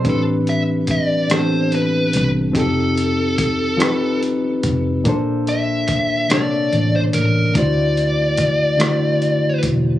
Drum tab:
HH |xxxxxx|xxxxxx|xxxxxx|xxxxxx|
SD |---r--|---r--|---r--|---r--|
BD |o-o---|o-o--o|o-o---|o-o--o|